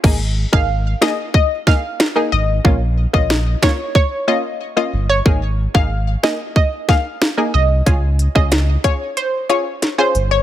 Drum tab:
CC |x---------------|----------------|----------------|----------------|
HH |----------------|----------------|----------------|x-x-x-x-x-x-x-x-|
SD |------o---o-o---|----o-o---------|------o---o-o---|----o-------o---|
BD |o--o----o-o-----|o--o--o-o-------|o--o----o-o-----|o--o--o---------|